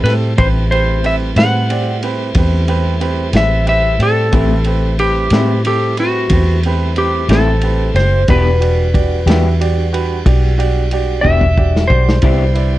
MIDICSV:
0, 0, Header, 1, 7, 480
1, 0, Start_track
1, 0, Tempo, 658617
1, 278, Time_signature, 12, 3, 24, 8
1, 9318, End_track
2, 0, Start_track
2, 0, Title_t, "Electric slide guitar"
2, 0, Program_c, 0, 29
2, 28, Note_on_c, 0, 71, 80
2, 94, Note_off_c, 0, 71, 0
2, 278, Note_on_c, 0, 72, 88
2, 343, Note_off_c, 0, 72, 0
2, 518, Note_on_c, 0, 72, 98
2, 765, Note_off_c, 0, 72, 0
2, 773, Note_on_c, 0, 76, 83
2, 836, Note_off_c, 0, 76, 0
2, 1002, Note_on_c, 0, 78, 83
2, 1511, Note_off_c, 0, 78, 0
2, 2452, Note_on_c, 0, 76, 95
2, 2680, Note_off_c, 0, 76, 0
2, 2689, Note_on_c, 0, 76, 98
2, 2931, Note_off_c, 0, 76, 0
2, 2934, Note_on_c, 0, 69, 93
2, 3617, Note_off_c, 0, 69, 0
2, 3641, Note_on_c, 0, 67, 81
2, 4090, Note_off_c, 0, 67, 0
2, 4131, Note_on_c, 0, 67, 76
2, 4369, Note_off_c, 0, 67, 0
2, 4372, Note_on_c, 0, 66, 70
2, 4816, Note_off_c, 0, 66, 0
2, 5087, Note_on_c, 0, 67, 72
2, 5321, Note_off_c, 0, 67, 0
2, 5324, Note_on_c, 0, 69, 73
2, 5801, Note_on_c, 0, 72, 81
2, 5815, Note_off_c, 0, 69, 0
2, 6022, Note_off_c, 0, 72, 0
2, 6050, Note_on_c, 0, 71, 96
2, 8173, Note_on_c, 0, 76, 94
2, 8267, Note_off_c, 0, 71, 0
2, 8655, Note_on_c, 0, 72, 96
2, 8679, Note_off_c, 0, 76, 0
2, 9318, Note_off_c, 0, 72, 0
2, 9318, End_track
3, 0, Start_track
3, 0, Title_t, "Grand piano"
3, 0, Program_c, 1, 0
3, 35, Note_on_c, 1, 60, 48
3, 38, Note_on_c, 1, 67, 46
3, 49, Note_on_c, 1, 69, 58
3, 217, Note_off_c, 1, 60, 0
3, 218, Note_off_c, 1, 67, 0
3, 224, Note_off_c, 1, 69, 0
3, 272, Note_on_c, 1, 60, 59
3, 277, Note_on_c, 1, 67, 57
3, 282, Note_on_c, 1, 71, 72
3, 455, Note_off_c, 1, 60, 0
3, 457, Note_off_c, 1, 67, 0
3, 460, Note_off_c, 1, 71, 0
3, 523, Note_on_c, 1, 60, 49
3, 528, Note_on_c, 1, 71, 57
3, 529, Note_on_c, 1, 67, 46
3, 701, Note_off_c, 1, 60, 0
3, 703, Note_off_c, 1, 71, 0
3, 704, Note_off_c, 1, 67, 0
3, 751, Note_on_c, 1, 60, 55
3, 758, Note_on_c, 1, 67, 49
3, 759, Note_on_c, 1, 71, 58
3, 935, Note_off_c, 1, 60, 0
3, 938, Note_off_c, 1, 67, 0
3, 939, Note_off_c, 1, 71, 0
3, 991, Note_on_c, 1, 60, 55
3, 995, Note_on_c, 1, 67, 50
3, 997, Note_on_c, 1, 71, 64
3, 1175, Note_off_c, 1, 60, 0
3, 1177, Note_off_c, 1, 67, 0
3, 1178, Note_off_c, 1, 71, 0
3, 1237, Note_on_c, 1, 60, 55
3, 1244, Note_on_c, 1, 67, 51
3, 1248, Note_on_c, 1, 74, 60
3, 1418, Note_off_c, 1, 60, 0
3, 1421, Note_off_c, 1, 67, 0
3, 1423, Note_off_c, 1, 74, 0
3, 1476, Note_on_c, 1, 60, 53
3, 1483, Note_on_c, 1, 67, 50
3, 1485, Note_on_c, 1, 71, 61
3, 1657, Note_off_c, 1, 60, 0
3, 1661, Note_off_c, 1, 67, 0
3, 1662, Note_off_c, 1, 71, 0
3, 1726, Note_on_c, 1, 60, 58
3, 1730, Note_on_c, 1, 67, 51
3, 1736, Note_on_c, 1, 71, 61
3, 1902, Note_off_c, 1, 60, 0
3, 1904, Note_off_c, 1, 67, 0
3, 1907, Note_off_c, 1, 71, 0
3, 1953, Note_on_c, 1, 60, 69
3, 1957, Note_on_c, 1, 67, 64
3, 1961, Note_on_c, 1, 71, 75
3, 2136, Note_off_c, 1, 60, 0
3, 2138, Note_off_c, 1, 67, 0
3, 2140, Note_off_c, 1, 71, 0
3, 2186, Note_on_c, 1, 60, 68
3, 2194, Note_on_c, 1, 67, 56
3, 2199, Note_on_c, 1, 71, 67
3, 2372, Note_off_c, 1, 60, 0
3, 2376, Note_off_c, 1, 67, 0
3, 2379, Note_off_c, 1, 71, 0
3, 2430, Note_on_c, 1, 67, 52
3, 2431, Note_on_c, 1, 60, 51
3, 2440, Note_on_c, 1, 71, 62
3, 2614, Note_off_c, 1, 67, 0
3, 2615, Note_off_c, 1, 60, 0
3, 2619, Note_off_c, 1, 71, 0
3, 2671, Note_on_c, 1, 60, 59
3, 2672, Note_on_c, 1, 67, 54
3, 2676, Note_on_c, 1, 71, 61
3, 2855, Note_off_c, 1, 60, 0
3, 2855, Note_off_c, 1, 67, 0
3, 2857, Note_off_c, 1, 71, 0
3, 2911, Note_on_c, 1, 60, 54
3, 2918, Note_on_c, 1, 67, 51
3, 2922, Note_on_c, 1, 74, 53
3, 3095, Note_off_c, 1, 60, 0
3, 3098, Note_off_c, 1, 67, 0
3, 3100, Note_off_c, 1, 74, 0
3, 3143, Note_on_c, 1, 60, 68
3, 3153, Note_on_c, 1, 67, 58
3, 3160, Note_on_c, 1, 71, 70
3, 3331, Note_off_c, 1, 60, 0
3, 3335, Note_off_c, 1, 67, 0
3, 3339, Note_off_c, 1, 71, 0
3, 3389, Note_on_c, 1, 60, 54
3, 3398, Note_on_c, 1, 67, 50
3, 3404, Note_on_c, 1, 71, 58
3, 3574, Note_off_c, 1, 60, 0
3, 3578, Note_off_c, 1, 67, 0
3, 3581, Note_off_c, 1, 71, 0
3, 3637, Note_on_c, 1, 60, 51
3, 3639, Note_on_c, 1, 67, 48
3, 3645, Note_on_c, 1, 71, 63
3, 3817, Note_off_c, 1, 60, 0
3, 3818, Note_off_c, 1, 67, 0
3, 3821, Note_off_c, 1, 71, 0
3, 3879, Note_on_c, 1, 60, 57
3, 3881, Note_on_c, 1, 67, 56
3, 3889, Note_on_c, 1, 71, 67
3, 4058, Note_off_c, 1, 60, 0
3, 4059, Note_off_c, 1, 67, 0
3, 4063, Note_off_c, 1, 71, 0
3, 4117, Note_on_c, 1, 60, 55
3, 4126, Note_on_c, 1, 67, 52
3, 4130, Note_on_c, 1, 69, 58
3, 4298, Note_off_c, 1, 60, 0
3, 4302, Note_off_c, 1, 67, 0
3, 4304, Note_off_c, 1, 69, 0
3, 4362, Note_on_c, 1, 60, 54
3, 4363, Note_on_c, 1, 67, 51
3, 4367, Note_on_c, 1, 71, 65
3, 4540, Note_off_c, 1, 60, 0
3, 4540, Note_off_c, 1, 67, 0
3, 4542, Note_off_c, 1, 71, 0
3, 4598, Note_on_c, 1, 60, 51
3, 4608, Note_on_c, 1, 67, 45
3, 4613, Note_on_c, 1, 71, 55
3, 4778, Note_off_c, 1, 60, 0
3, 4783, Note_off_c, 1, 67, 0
3, 4786, Note_off_c, 1, 71, 0
3, 4847, Note_on_c, 1, 60, 58
3, 4853, Note_on_c, 1, 67, 54
3, 4860, Note_on_c, 1, 71, 64
3, 5022, Note_off_c, 1, 60, 0
3, 5025, Note_off_c, 1, 67, 0
3, 5029, Note_off_c, 1, 71, 0
3, 5075, Note_on_c, 1, 60, 50
3, 5080, Note_on_c, 1, 67, 48
3, 5085, Note_on_c, 1, 71, 60
3, 5256, Note_off_c, 1, 60, 0
3, 5259, Note_off_c, 1, 67, 0
3, 5261, Note_off_c, 1, 71, 0
3, 5312, Note_on_c, 1, 60, 55
3, 5318, Note_on_c, 1, 67, 49
3, 5325, Note_on_c, 1, 71, 57
3, 5495, Note_off_c, 1, 60, 0
3, 5498, Note_off_c, 1, 67, 0
3, 5501, Note_off_c, 1, 71, 0
3, 5558, Note_on_c, 1, 60, 54
3, 5561, Note_on_c, 1, 67, 49
3, 5569, Note_on_c, 1, 71, 56
3, 5737, Note_off_c, 1, 60, 0
3, 5739, Note_off_c, 1, 67, 0
3, 5743, Note_off_c, 1, 71, 0
3, 5790, Note_on_c, 1, 60, 53
3, 5795, Note_on_c, 1, 67, 50
3, 5802, Note_on_c, 1, 72, 54
3, 5973, Note_off_c, 1, 60, 0
3, 5976, Note_off_c, 1, 67, 0
3, 5980, Note_off_c, 1, 72, 0
3, 6034, Note_on_c, 1, 66, 63
3, 6040, Note_on_c, 1, 67, 63
3, 6043, Note_on_c, 1, 74, 70
3, 6215, Note_off_c, 1, 66, 0
3, 6219, Note_off_c, 1, 67, 0
3, 6220, Note_off_c, 1, 74, 0
3, 6266, Note_on_c, 1, 66, 57
3, 6272, Note_on_c, 1, 67, 46
3, 6276, Note_on_c, 1, 74, 57
3, 6451, Note_off_c, 1, 66, 0
3, 6454, Note_off_c, 1, 67, 0
3, 6457, Note_off_c, 1, 74, 0
3, 6512, Note_on_c, 1, 66, 53
3, 6517, Note_on_c, 1, 74, 61
3, 6518, Note_on_c, 1, 67, 46
3, 6694, Note_off_c, 1, 66, 0
3, 6697, Note_off_c, 1, 67, 0
3, 6697, Note_off_c, 1, 74, 0
3, 6754, Note_on_c, 1, 66, 64
3, 6766, Note_on_c, 1, 67, 63
3, 6770, Note_on_c, 1, 76, 76
3, 6935, Note_off_c, 1, 66, 0
3, 6941, Note_off_c, 1, 67, 0
3, 6943, Note_off_c, 1, 76, 0
3, 6996, Note_on_c, 1, 66, 60
3, 7003, Note_on_c, 1, 67, 55
3, 7005, Note_on_c, 1, 74, 73
3, 7176, Note_off_c, 1, 66, 0
3, 7180, Note_off_c, 1, 67, 0
3, 7180, Note_off_c, 1, 74, 0
3, 7235, Note_on_c, 1, 66, 69
3, 7236, Note_on_c, 1, 67, 59
3, 7240, Note_on_c, 1, 71, 74
3, 7415, Note_off_c, 1, 66, 0
3, 7416, Note_off_c, 1, 67, 0
3, 7418, Note_off_c, 1, 71, 0
3, 7472, Note_on_c, 1, 66, 54
3, 7479, Note_on_c, 1, 67, 53
3, 7480, Note_on_c, 1, 74, 61
3, 7654, Note_off_c, 1, 66, 0
3, 7658, Note_off_c, 1, 67, 0
3, 7658, Note_off_c, 1, 74, 0
3, 7710, Note_on_c, 1, 66, 65
3, 7717, Note_on_c, 1, 67, 62
3, 7717, Note_on_c, 1, 74, 76
3, 7893, Note_off_c, 1, 66, 0
3, 7896, Note_off_c, 1, 67, 0
3, 7896, Note_off_c, 1, 74, 0
3, 7954, Note_on_c, 1, 66, 63
3, 7962, Note_on_c, 1, 67, 53
3, 7969, Note_on_c, 1, 74, 69
3, 8135, Note_off_c, 1, 66, 0
3, 8139, Note_off_c, 1, 67, 0
3, 8142, Note_off_c, 1, 74, 0
3, 8191, Note_on_c, 1, 66, 56
3, 8197, Note_on_c, 1, 67, 49
3, 8205, Note_on_c, 1, 74, 60
3, 8374, Note_off_c, 1, 66, 0
3, 8376, Note_off_c, 1, 67, 0
3, 8380, Note_off_c, 1, 74, 0
3, 8432, Note_on_c, 1, 66, 55
3, 8438, Note_on_c, 1, 67, 48
3, 8445, Note_on_c, 1, 74, 63
3, 8614, Note_off_c, 1, 66, 0
3, 8617, Note_off_c, 1, 67, 0
3, 8620, Note_off_c, 1, 74, 0
3, 8659, Note_on_c, 1, 66, 50
3, 8665, Note_on_c, 1, 67, 42
3, 8671, Note_on_c, 1, 74, 60
3, 8847, Note_off_c, 1, 66, 0
3, 8850, Note_off_c, 1, 67, 0
3, 8853, Note_off_c, 1, 74, 0
3, 8908, Note_on_c, 1, 64, 60
3, 8915, Note_on_c, 1, 71, 60
3, 8921, Note_on_c, 1, 74, 67
3, 9092, Note_off_c, 1, 64, 0
3, 9095, Note_off_c, 1, 71, 0
3, 9098, Note_off_c, 1, 74, 0
3, 9134, Note_on_c, 1, 64, 54
3, 9141, Note_on_c, 1, 71, 48
3, 9151, Note_on_c, 1, 74, 63
3, 9318, Note_off_c, 1, 64, 0
3, 9318, Note_off_c, 1, 71, 0
3, 9318, Note_off_c, 1, 74, 0
3, 9318, End_track
4, 0, Start_track
4, 0, Title_t, "Tonewheel organ"
4, 0, Program_c, 2, 16
4, 0, Note_on_c, 2, 55, 63
4, 0, Note_on_c, 2, 57, 71
4, 0, Note_on_c, 2, 60, 66
4, 0, Note_on_c, 2, 64, 68
4, 244, Note_off_c, 2, 64, 0
4, 245, Note_off_c, 2, 57, 0
4, 246, Note_off_c, 2, 60, 0
4, 248, Note_off_c, 2, 55, 0
4, 260, Note_on_c, 2, 57, 69
4, 262, Note_on_c, 2, 60, 71
4, 265, Note_on_c, 2, 55, 69
4, 272, Note_on_c, 2, 64, 64
4, 3121, Note_off_c, 2, 57, 0
4, 3121, Note_off_c, 2, 60, 0
4, 3123, Note_off_c, 2, 55, 0
4, 3126, Note_off_c, 2, 64, 0
4, 3146, Note_on_c, 2, 57, 71
4, 3152, Note_on_c, 2, 55, 62
4, 3155, Note_on_c, 2, 60, 70
4, 3160, Note_on_c, 2, 64, 68
4, 6002, Note_off_c, 2, 57, 0
4, 6005, Note_off_c, 2, 55, 0
4, 6007, Note_off_c, 2, 60, 0
4, 6009, Note_off_c, 2, 64, 0
4, 6038, Note_on_c, 2, 55, 65
4, 6039, Note_on_c, 2, 62, 67
4, 6042, Note_on_c, 2, 66, 66
4, 8887, Note_off_c, 2, 55, 0
4, 8888, Note_off_c, 2, 62, 0
4, 8889, Note_off_c, 2, 66, 0
4, 8906, Note_on_c, 2, 50, 69
4, 8907, Note_on_c, 2, 64, 64
4, 8907, Note_on_c, 2, 67, 65
4, 8914, Note_on_c, 2, 60, 68
4, 9318, Note_off_c, 2, 50, 0
4, 9318, Note_off_c, 2, 60, 0
4, 9318, Note_off_c, 2, 64, 0
4, 9318, Note_off_c, 2, 67, 0
4, 9318, End_track
5, 0, Start_track
5, 0, Title_t, "Clean electric guitar"
5, 0, Program_c, 3, 27
5, 3156, Note_on_c, 3, 55, 69
5, 3157, Note_on_c, 3, 45, 67
5, 3165, Note_on_c, 3, 64, 81
5, 3166, Note_on_c, 3, 60, 76
5, 3301, Note_off_c, 3, 45, 0
5, 3301, Note_off_c, 3, 55, 0
5, 3305, Note_off_c, 3, 64, 0
5, 3306, Note_off_c, 3, 60, 0
5, 3884, Note_on_c, 3, 64, 64
5, 3888, Note_on_c, 3, 60, 72
5, 3895, Note_on_c, 3, 55, 67
5, 3898, Note_on_c, 3, 45, 62
5, 4025, Note_off_c, 3, 64, 0
5, 4027, Note_off_c, 3, 60, 0
5, 4031, Note_off_c, 3, 55, 0
5, 4032, Note_off_c, 3, 45, 0
5, 5318, Note_on_c, 3, 64, 77
5, 5319, Note_on_c, 3, 55, 61
5, 5321, Note_on_c, 3, 60, 70
5, 5328, Note_on_c, 3, 45, 66
5, 5461, Note_off_c, 3, 64, 0
5, 5462, Note_off_c, 3, 55, 0
5, 5463, Note_off_c, 3, 60, 0
5, 5467, Note_off_c, 3, 45, 0
5, 6045, Note_on_c, 3, 52, 64
5, 6048, Note_on_c, 3, 59, 72
5, 6056, Note_on_c, 3, 62, 68
5, 6056, Note_on_c, 3, 67, 74
5, 6185, Note_off_c, 3, 52, 0
5, 6186, Note_off_c, 3, 59, 0
5, 6190, Note_off_c, 3, 62, 0
5, 6190, Note_off_c, 3, 67, 0
5, 6754, Note_on_c, 3, 67, 75
5, 6761, Note_on_c, 3, 62, 73
5, 6762, Note_on_c, 3, 59, 72
5, 6767, Note_on_c, 3, 52, 61
5, 6899, Note_off_c, 3, 67, 0
5, 6903, Note_off_c, 3, 59, 0
5, 6903, Note_off_c, 3, 62, 0
5, 6906, Note_off_c, 3, 52, 0
5, 8184, Note_on_c, 3, 67, 68
5, 8187, Note_on_c, 3, 62, 71
5, 8193, Note_on_c, 3, 59, 62
5, 8197, Note_on_c, 3, 52, 60
5, 8334, Note_off_c, 3, 67, 0
5, 8335, Note_off_c, 3, 62, 0
5, 8338, Note_off_c, 3, 59, 0
5, 8340, Note_off_c, 3, 52, 0
5, 8911, Note_on_c, 3, 48, 68
5, 8919, Note_on_c, 3, 64, 72
5, 8920, Note_on_c, 3, 59, 69
5, 8927, Note_on_c, 3, 67, 79
5, 9057, Note_off_c, 3, 48, 0
5, 9061, Note_off_c, 3, 64, 0
5, 9062, Note_off_c, 3, 59, 0
5, 9065, Note_off_c, 3, 67, 0
5, 9318, End_track
6, 0, Start_track
6, 0, Title_t, "Fingered electric bass"
6, 0, Program_c, 4, 33
6, 27, Note_on_c, 4, 45, 79
6, 253, Note_off_c, 4, 45, 0
6, 280, Note_on_c, 4, 33, 98
6, 970, Note_off_c, 4, 33, 0
6, 992, Note_on_c, 4, 45, 84
6, 1686, Note_off_c, 4, 45, 0
6, 1713, Note_on_c, 4, 40, 88
6, 2407, Note_off_c, 4, 40, 0
6, 2428, Note_on_c, 4, 33, 86
6, 2884, Note_off_c, 4, 33, 0
6, 2909, Note_on_c, 4, 45, 84
6, 3134, Note_off_c, 4, 45, 0
6, 3152, Note_on_c, 4, 33, 100
6, 3846, Note_off_c, 4, 33, 0
6, 3870, Note_on_c, 4, 45, 91
6, 4565, Note_off_c, 4, 45, 0
6, 4591, Note_on_c, 4, 40, 86
6, 5285, Note_off_c, 4, 40, 0
6, 5309, Note_on_c, 4, 33, 78
6, 5764, Note_off_c, 4, 33, 0
6, 5789, Note_on_c, 4, 30, 81
6, 6013, Note_off_c, 4, 30, 0
6, 6041, Note_on_c, 4, 28, 103
6, 6729, Note_off_c, 4, 28, 0
6, 6749, Note_on_c, 4, 40, 87
6, 7443, Note_off_c, 4, 40, 0
6, 7476, Note_on_c, 4, 35, 87
6, 8166, Note_off_c, 4, 35, 0
6, 8195, Note_on_c, 4, 28, 80
6, 8646, Note_off_c, 4, 28, 0
6, 8675, Note_on_c, 4, 35, 74
6, 8896, Note_off_c, 4, 35, 0
6, 8913, Note_on_c, 4, 36, 99
6, 9318, Note_off_c, 4, 36, 0
6, 9318, End_track
7, 0, Start_track
7, 0, Title_t, "Drums"
7, 40, Note_on_c, 9, 51, 59
7, 58, Note_on_c, 9, 38, 31
7, 112, Note_off_c, 9, 51, 0
7, 131, Note_off_c, 9, 38, 0
7, 278, Note_on_c, 9, 51, 73
7, 280, Note_on_c, 9, 36, 106
7, 350, Note_off_c, 9, 51, 0
7, 353, Note_off_c, 9, 36, 0
7, 524, Note_on_c, 9, 51, 52
7, 597, Note_off_c, 9, 51, 0
7, 759, Note_on_c, 9, 51, 55
7, 831, Note_off_c, 9, 51, 0
7, 993, Note_on_c, 9, 51, 72
7, 1012, Note_on_c, 9, 38, 102
7, 1066, Note_off_c, 9, 51, 0
7, 1085, Note_off_c, 9, 38, 0
7, 1239, Note_on_c, 9, 51, 64
7, 1312, Note_off_c, 9, 51, 0
7, 1476, Note_on_c, 9, 51, 60
7, 1549, Note_off_c, 9, 51, 0
7, 1709, Note_on_c, 9, 51, 83
7, 1715, Note_on_c, 9, 36, 109
7, 1782, Note_off_c, 9, 51, 0
7, 1788, Note_off_c, 9, 36, 0
7, 1953, Note_on_c, 9, 51, 53
7, 2025, Note_off_c, 9, 51, 0
7, 2194, Note_on_c, 9, 51, 59
7, 2267, Note_off_c, 9, 51, 0
7, 2427, Note_on_c, 9, 51, 76
7, 2446, Note_on_c, 9, 38, 104
7, 2499, Note_off_c, 9, 51, 0
7, 2518, Note_off_c, 9, 38, 0
7, 2674, Note_on_c, 9, 51, 59
7, 2747, Note_off_c, 9, 51, 0
7, 2914, Note_on_c, 9, 51, 64
7, 2986, Note_off_c, 9, 51, 0
7, 3152, Note_on_c, 9, 51, 78
7, 3154, Note_on_c, 9, 36, 106
7, 3225, Note_off_c, 9, 51, 0
7, 3227, Note_off_c, 9, 36, 0
7, 3385, Note_on_c, 9, 51, 61
7, 3458, Note_off_c, 9, 51, 0
7, 3635, Note_on_c, 9, 51, 59
7, 3708, Note_off_c, 9, 51, 0
7, 3864, Note_on_c, 9, 51, 77
7, 3883, Note_on_c, 9, 38, 104
7, 3937, Note_off_c, 9, 51, 0
7, 3956, Note_off_c, 9, 38, 0
7, 4115, Note_on_c, 9, 51, 70
7, 4188, Note_off_c, 9, 51, 0
7, 4352, Note_on_c, 9, 51, 62
7, 4425, Note_off_c, 9, 51, 0
7, 4588, Note_on_c, 9, 51, 90
7, 4595, Note_on_c, 9, 36, 107
7, 4661, Note_off_c, 9, 51, 0
7, 4668, Note_off_c, 9, 36, 0
7, 4834, Note_on_c, 9, 51, 54
7, 4907, Note_off_c, 9, 51, 0
7, 5072, Note_on_c, 9, 51, 54
7, 5144, Note_off_c, 9, 51, 0
7, 5313, Note_on_c, 9, 51, 77
7, 5332, Note_on_c, 9, 38, 103
7, 5386, Note_off_c, 9, 51, 0
7, 5405, Note_off_c, 9, 38, 0
7, 5549, Note_on_c, 9, 51, 57
7, 5622, Note_off_c, 9, 51, 0
7, 5798, Note_on_c, 9, 51, 60
7, 5817, Note_on_c, 9, 38, 31
7, 5871, Note_off_c, 9, 51, 0
7, 5890, Note_off_c, 9, 38, 0
7, 6034, Note_on_c, 9, 51, 68
7, 6038, Note_on_c, 9, 36, 107
7, 6107, Note_off_c, 9, 51, 0
7, 6111, Note_off_c, 9, 36, 0
7, 6281, Note_on_c, 9, 51, 58
7, 6354, Note_off_c, 9, 51, 0
7, 6519, Note_on_c, 9, 36, 76
7, 6520, Note_on_c, 9, 51, 59
7, 6591, Note_off_c, 9, 36, 0
7, 6593, Note_off_c, 9, 51, 0
7, 6759, Note_on_c, 9, 51, 78
7, 6778, Note_on_c, 9, 38, 97
7, 6831, Note_off_c, 9, 51, 0
7, 6850, Note_off_c, 9, 38, 0
7, 7006, Note_on_c, 9, 51, 65
7, 7079, Note_off_c, 9, 51, 0
7, 7244, Note_on_c, 9, 51, 62
7, 7317, Note_off_c, 9, 51, 0
7, 7477, Note_on_c, 9, 36, 114
7, 7478, Note_on_c, 9, 51, 88
7, 7550, Note_off_c, 9, 36, 0
7, 7551, Note_off_c, 9, 51, 0
7, 7723, Note_on_c, 9, 51, 59
7, 7796, Note_off_c, 9, 51, 0
7, 7952, Note_on_c, 9, 51, 60
7, 8025, Note_off_c, 9, 51, 0
7, 8196, Note_on_c, 9, 36, 60
7, 8269, Note_off_c, 9, 36, 0
7, 8318, Note_on_c, 9, 36, 56
7, 8391, Note_off_c, 9, 36, 0
7, 8437, Note_on_c, 9, 36, 78
7, 8510, Note_off_c, 9, 36, 0
7, 8574, Note_on_c, 9, 38, 69
7, 8647, Note_off_c, 9, 38, 0
7, 8673, Note_on_c, 9, 36, 84
7, 8746, Note_off_c, 9, 36, 0
7, 8809, Note_on_c, 9, 38, 85
7, 8882, Note_off_c, 9, 38, 0
7, 8904, Note_on_c, 9, 51, 70
7, 8912, Note_on_c, 9, 36, 93
7, 8977, Note_off_c, 9, 51, 0
7, 8985, Note_off_c, 9, 36, 0
7, 9149, Note_on_c, 9, 51, 57
7, 9222, Note_off_c, 9, 51, 0
7, 9318, End_track
0, 0, End_of_file